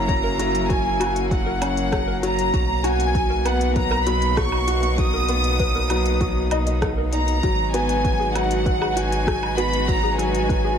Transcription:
0.00 2.51 F#1 medium
0.00 0.09 F#3 loud
0.00 2.53 F#3 medium
0.00 7.43 A#3 medium
0.00 1.61 C#4 loud
0.00 3.40 C#4 medium
0.00 2.54 E4 medium
0.00 1.00 F#4 loud
0.00 0.70 A#5 loud
0.08 0.38 F#3 medium
0.08 0.13 C#5 loud
0.08 kick loud
0.08 closed hi-hat soft
0.24 0.31 A#4 loud
0.39 0.68 F#3 loud
0.39 0.44 F#4 medium
0.39 closed hi-hat medium
0.55 closed hi-hat soft
0.69 0.99 F#3 medium
0.69 0.81 F#4 loud
0.69 1.31 G#5 loud
0.69 kick loud
0.69 closed hi-hat soft
1.00 1.05 F#4 loud
1.00 1.30 F#4 loud
1.00 closed hi-hat medium
1.00 low woodblock medium
1.16 1.23 F#5 medium
1.16 closed hi-hat soft
1.31 1.60 F#3 medium
1.31 1.36 F#4 medium
1.31 2.19 F#5 loud
1.31 kick loud
1.31 closed hi-hat soft
1.46 1.58 A#4 loud
1.61 1.91 C#4 loud
1.61 closed hi-hat medium
1.61 low woodblock medium
1.77 closed hi-hat soft
1.92 2.21 F#3 medium
1.92 1.97 C#5 loud
1.92 kick medium
1.92 cross-stick medium
1.92 closed hi-hat soft
2.08 2.15 A#4 loud
2.23 2.52 F#3 loud
2.23 2.28 F#4 medium
2.23 2.85 A#5 loud
2.23 closed hi-hat medium
2.39 closed hi-hat soft
2.54 7.40 B1 loud
2.54 7.43 B2 medium
2.54 2.83 F#3 medium
2.54 2.65 F#4 loud
2.54 kick loud
2.54 closed hi-hat soft
2.79 9.14 B3 medium
2.84 3.13 F#4 loud
2.84 2.89 F#4 loud
2.84 3.46 G#5 loud
2.84 closed hi-hat medium
2.99 3.07 F#5 medium
2.99 closed hi-hat soft
3.15 3.44 F#3 medium
3.15 10.78 D#4 medium
3.15 3.19 F#4 medium
3.15 kick loud
3.15 closed hi-hat soft
3.30 3.41 A#4 loud
3.45 3.74 B3 loud
3.45 3.76 F#5 loud
3.45 closed hi-hat medium
3.45 low woodblock medium
3.61 closed hi-hat soft
3.76 4.05 F#3 medium
3.76 3.80 B4 loud
3.76 4.05 A#5 loud
3.76 kick loud
3.76 closed hi-hat soft
3.91 3.99 A#4 loud
3.91 low woodblock medium
4.06 4.36 F#3 loud
4.06 4.11 F#4 medium
4.06 4.37 B5 loud
4.06 closed hi-hat medium
4.22 closed hi-hat soft
4.37 4.66 F#3 medium
4.37 4.49 F#4 loud
4.37 4.98 C#6 loud
4.37 kick medium
4.37 cross-stick medium
4.37 closed hi-hat soft
4.52 low woodblock medium
4.68 4.72 F#4 loud
4.68 4.97 F#4 loud
4.68 closed hi-hat medium
4.83 4.91 F#5 medium
4.83 closed hi-hat soft
4.98 5.27 F#3 medium
4.98 5.03 F#4 medium
4.98 6.82 D#6 loud
4.98 kick loud
4.98 closed hi-hat soft
5.14 5.25 A#4 loud
5.29 5.58 B3 loud
5.29 closed hi-hat medium
5.44 closed hi-hat soft
5.59 5.89 F#3 medium
5.59 5.64 B4 loud
5.59 kick loud
5.59 closed hi-hat soft
5.75 5.83 A#4 loud
5.90 6.19 F#3 medium
5.90 5.95 F#4 medium
5.90 closed hi-hat medium
5.90 low woodblock medium
6.06 closed hi-hat soft
6.20 6.50 F#3 medium
6.20 6.32 F#4 loud
6.20 kick medium
6.20 closed hi-hat soft
6.51 6.69 D#4 medium
6.51 6.59 D#5 loud
6.51 closed hi-hat medium
6.51 low woodblock medium
6.67 6.74 D#5 medium
6.67 closed hi-hat soft
6.82 7.11 F#3 medium
6.82 6.94 F#5 loud
6.82 kick loud
6.82 cross-stick medium
6.82 closed hi-hat soft
6.98 7.09 A#4 medium
7.13 7.42 D#4 medium
7.13 7.70 A#5 loud
7.13 closed hi-hat medium
7.28 closed hi-hat soft
7.43 10.78 G#1 medium
7.43 7.72 F#3 medium
7.43 10.78 G#3 medium
7.43 7.55 F#4 loud
7.43 kick loud
7.43 closed hi-hat soft
7.63 10.78 F#4 medium
7.74 8.03 B3 loud
7.74 7.78 F#4 loud
7.74 8.35 G#5 loud
7.74 closed hi-hat medium
7.89 7.97 F#5 medium
7.89 closed hi-hat soft
8.04 8.34 F#3 medium
8.04 8.09 F#4 medium
8.04 kick loud
8.04 closed hi-hat soft
8.20 8.31 G#4 loud
8.35 8.64 F#3 loud
8.35 10.78 B4 medium
8.35 8.97 F#5 loud
8.35 closed hi-hat medium
8.35 low woodblock medium
8.51 closed hi-hat soft
8.66 8.95 F#3 medium
8.66 8.70 B4 loud
8.66 kick loud
8.66 closed hi-hat soft
8.81 8.89 G#4 loud
8.81 low woodblock medium
8.96 9.25 F#4 loud
8.96 9.01 F#4 medium
8.96 9.58 G#5 loud
8.96 closed hi-hat medium
9.12 closed hi-hat soft
9.27 9.56 F#3 medium
9.27 9.39 F#4 loud
9.27 kick loud
9.27 cross-stick medium
9.27 closed hi-hat soft
9.43 low woodblock medium
9.57 9.87 B3 loud
9.57 9.62 F#4 loud
9.57 9.89 B5 loud
9.57 closed hi-hat medium
9.73 9.80 F#5 medium
9.73 closed hi-hat soft
9.88 10.17 F#3 medium
9.88 9.93 F#4 medium
9.88 10.19 A#5 loud
9.88 kick loud
9.88 closed hi-hat soft
10.03 10.15 G#4 loud
10.18 10.48 F#3 loud
10.18 10.78 G#5 loud
10.18 closed hi-hat medium
10.35 closed hi-hat soft
10.49 10.78 F#3 medium
10.49 10.54 B4 loud
10.49 kick loud
10.49 closed hi-hat soft
10.65 10.72 G#4 loud

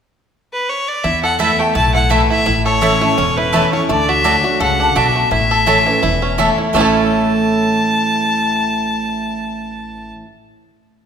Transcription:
0.53 0.70 B4 medium
0.69 0.90 C#5 medium
0.88 1.05 D5 medium
1.04 1.72 E2 medium
1.04 1.49 E2 medium
1.04 1.39 E4 medium
1.04 1.23 E5 loud
1.23 2.64 A4 medium
1.23 1.38 F#5 medium
1.39 1.73 E3 medium
1.39 1.49 A3 medium
1.39 1.74 A3 medium
1.39 1.74 B3 loud
1.39 1.50 E4 medium
1.39 1.74 E4 medium
1.39 1.50 B4 medium
1.39 1.61 E5 medium
1.39 1.50 A5 loud
1.59 2.10 A3 medium
1.59 1.75 G5 medium
1.75 2.20 B1 medium
1.75 2.43 A2 medium
1.75 1.94 E4 medium
1.75 1.93 A5 loud
1.94 2.29 E4 medium
1.94 2.12 F#5 medium
2.10 2.44 E3 medium
2.10 2.20 A3 medium
2.10 2.45 A3 medium
2.10 3.01 A3 medium
2.10 2.45 B3 medium
2.10 2.20 E4 medium
2.10 2.45 E4 loud
2.10 2.21 B4 medium
2.10 2.29 E5 medium
2.10 2.21 A5 medium
2.30 2.45 E4 medium
2.30 2.63 E5 loud
2.46 2.91 A1 medium
2.46 3.14 A2 medium
2.46 2.81 E4 medium
2.65 4.06 A4 medium
2.65 3.39 C#5 loud
2.81 3.00 E3 medium
2.81 2.92 A3 medium
2.81 3.01 A3 medium
2.81 3.01 C#4 loud
2.81 2.92 E4 medium
2.81 3.33 E4 medium
2.81 3.00 E4 medium
2.81 2.92 C#5 loud
2.81 2.92 A5 loud
3.01 3.53 A3 medium
3.01 3.18 C#4 soft
3.01 3.17 E4 medium
3.18 3.63 E1 medium
3.18 3.86 E2 medium
3.18 3.69 C#4 medium
3.37 3.86 E4 medium
3.37 3.73 B4 loud
3.52 3.72 E3 medium
3.52 3.63 A3 medium
3.52 3.89 A3 medium
3.52 3.73 A3 medium
3.52 3.73 C#4 loud
3.52 3.63 E4 medium
3.52 3.72 E4 loud
3.52 3.63 C#5 medium
3.52 3.63 A5 loud
3.73 3.89 C#4 medium
3.73 3.90 C#4 soft
3.73 3.88 E4 medium
3.73 3.88 C#5 medium
3.89 4.34 D2 medium
3.89 4.23 D3 medium
3.89 5.15 A3 medium
3.89 4.11 D5 medium
4.09 4.43 F#4 medium
4.09 4.61 E5 loud
4.24 4.43 D3 medium
4.24 4.76 F#3 medium
4.24 4.34 A3 loud
4.24 4.44 A3 medium
4.24 4.44 D4 loud
4.24 4.34 F#4 medium
4.24 4.43 F#4 medium
4.24 4.35 D5 medium
4.24 4.35 A5 medium
4.44 4.61 D4 soft
4.44 4.59 F#4 medium
4.44 4.93 F#4 medium
4.60 4.91 C#2 medium
4.60 4.94 C#3 medium
4.60 5.51 A4 medium
4.60 4.99 F#5 medium
4.80 5.28 D4 medium
4.95 5.26 B1 medium
4.95 5.30 B2 medium
4.95 5.06 A3 medium
4.95 5.06 F#4 medium
4.95 5.31 F#4 medium
4.95 5.06 D5 medium
4.95 5.32 E5 medium
4.95 5.06 A5 medium
5.16 5.67 A3 medium
5.31 5.76 A1 medium
5.31 5.99 A2 medium
5.31 5.83 E4 medium
5.31 6.55 E5 loud
5.51 6.00 A4 medium
5.66 5.86 E3 medium
5.66 5.77 A3 medium
5.66 6.19 A3 medium
5.66 5.86 A3 medium
5.66 5.87 C#4 medium
5.66 5.77 E4 loud
5.66 5.85 E4 loud
5.66 5.77 C#5 loud
5.66 5.77 A5 loud
5.86 6.35 E3 medium
5.86 6.03 C#4 soft
5.86 6.02 E4 medium
6.03 6.48 E1 medium
6.03 6.71 E2 medium
6.03 6.54 E4 medium
6.22 6.71 C#4 medium
6.38 6.73 E3 medium
6.38 6.48 A3 medium
6.38 6.73 A3 medium
6.38 6.73 C#4 medium
6.38 6.48 E4 medium
6.38 6.74 E4 medium
6.38 6.74 A4 medium
6.38 6.48 C#5 medium
6.38 6.49 A5 medium
6.58 6.74 E4 medium
6.73 10.11 A1 medium
6.73 10.23 A2 medium
6.73 10.25 E3 medium
6.73 10.23 A3 medium
6.73 10.12 A3 medium
6.73 10.25 A3 medium
6.73 10.26 C#4 medium
6.73 10.13 C#4 medium
6.73 10.24 E4 medium
6.73 10.25 C#5 medium
6.73 10.12 A5 loud
6.73 10.26 A5 loud
6.77 10.27 E4 medium
6.77 10.16 E4 medium
6.77 10.18 A4 medium

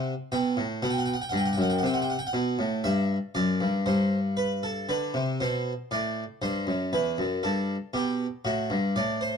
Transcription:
0.00 0.13 C3 medium
0.00 0.13 F#5 medium
0.32 0.57 B2 medium
0.32 0.63 G5 medium
0.57 0.82 A2 medium
0.82 1.14 B2 medium
0.82 0.91 F#5 medium
0.91 0.99 G5 medium
0.98 1.07 F#5 medium
1.06 1.14 G5 medium
1.14 1.22 F#5 medium
1.22 1.30 G5 medium
1.29 1.57 G2 medium
1.29 1.38 F#5 medium
1.37 1.46 G5 medium
1.45 1.54 F#5 medium
1.53 1.62 G5 medium
1.58 1.83 F#2 medium
1.62 1.70 F#5 medium
1.70 1.78 G5 medium
1.79 1.87 F#5 medium
1.83 2.15 C3 medium
1.83 1.94 G5 medium
1.94 2.02 F#5 medium
2.02 2.11 G5 medium
2.10 2.19 F#5 medium
2.19 2.27 G5 medium
2.27 2.83 F#5 medium
2.33 2.59 B2 medium
2.59 2.84 A2 medium
2.84 3.16 G2 medium
2.84 3.16 E5 medium
3.35 3.60 F#2 medium
3.35 3.67 D5 medium
3.61 3.85 G2 medium
3.86 4.85 G2 medium
3.86 4.18 C5 medium
4.37 4.62 B4 medium
4.63 4.88 A4 medium
4.89 5.14 D3 medium
4.89 5.21 B4 medium
5.14 5.39 C3 medium
5.40 5.72 B2 medium
5.40 5.72 C5 medium
5.91 6.23 A2 medium
5.91 6.23 D5 medium
6.42 6.67 G2 medium
6.42 6.73 C5 medium
6.67 6.92 F#2 medium
6.93 7.18 E2 medium
6.93 7.25 B4 medium
7.18 7.43 F#2 medium
7.43 7.75 G2 medium
7.43 7.75 A4 medium
7.94 8.25 B2 medium
7.94 8.26 G4 medium
8.45 8.70 A2 medium
8.45 8.76 F#4 medium
8.70 8.95 G2 medium
8.96 9.37 A2 medium
8.96 9.21 D5 medium
9.21 9.37 C5 medium

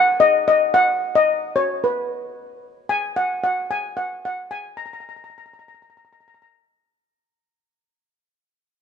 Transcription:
0.00 0.22 F#5 medium
0.20 0.45 D#5 medium
0.48 0.73 D#5 medium
0.74 1.17 F#5 medium
1.15 1.52 D#5 medium
1.56 1.68 C#5 medium
1.84 2.60 B4 medium
2.89 3.17 G#5 medium
3.16 3.42 F#5 medium
3.44 3.68 F#5 medium
3.71 3.98 G#5 medium
3.97 4.09 F#5 medium
4.25 4.52 F#5 medium
4.51 4.79 G#5 medium
4.77 4.84 A#5 medium
4.86 4.92 A#5 medium
4.93 4.99 A#5 medium
5.00 5.07 A#5 medium
5.09 5.15 A#5 medium
5.16 5.23 A#5 medium
5.24 5.29 A#5 medium
5.30 5.37 A#5 soft
5.38 5.45 A#5 medium
5.46 5.52 A#5 soft
5.53 5.58 A#5 medium
5.59 5.67 A#5 medium
5.68 5.73 A#5 medium
5.74 5.81 A#5 soft
5.82 5.89 A#5 medium
5.90 5.96 A#5 soft
5.97 6.03 A#5 medium
6.05 6.11 A#5 soft
6.13 6.19 A#5 medium
6.20 6.27 A#5 soft
6.28 6.33 A#5 medium
6.34 6.41 A#5 medium
6.42 6.50 A#5 medium

